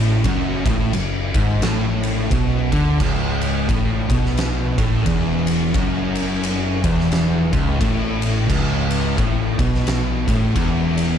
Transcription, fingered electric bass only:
0.00 0.20 A1 medium
0.25 0.63 F#1 loud
0.65 0.91 A1 medium
0.95 1.32 F#1 medium
1.34 1.60 G#1 medium
1.61 2.26 A1 medium
2.31 2.69 B1 loud
2.72 2.98 D2 medium
3.00 3.65 C#1 loud
3.69 4.07 A1 loud
4.10 4.74 B1 medium
4.78 5.04 A1 loud
5.07 5.71 E1 loud
5.75 6.80 F#1 loud
6.84 7.49 E1 loud
7.53 7.79 C#1 loud
7.81 8.46 A1 loud
8.50 9.14 C#1 loud
9.18 9.56 A1 loud
9.59 10.24 B1 loud
10.28 10.54 A1 loud
10.56 11.18 E1 loud

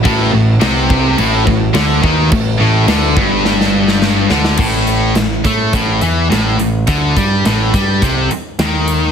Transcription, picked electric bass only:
0.05 0.31 A1 loud
0.33 0.59 A1 medium
0.62 1.14 C2 medium
1.18 1.45 A1 loud
1.47 1.73 A1 medium
1.74 2.01 D2 loud
2.03 2.30 D#2 loud
2.31 2.58 A1 medium
2.59 2.86 A1 loud
2.88 3.15 D2 medium
3.17 4.27 G1 medium
4.30 4.57 D2 medium
4.59 5.12 A1 medium
5.15 5.42 A1 medium
5.45 5.71 A2 medium
5.73 6.00 A1 medium
6.02 6.29 E2 medium
6.30 6.57 A1 medium
6.59 6.86 A1 medium
6.88 7.14 D2 loud
7.16 7.43 G2 medium
7.44 7.71 A1 medium
7.73 8.00 G2 medium
8.02 8.28 C2 medium
8.32 muted picked electric bass stroke soft
8.59 9.12 D#2 medium

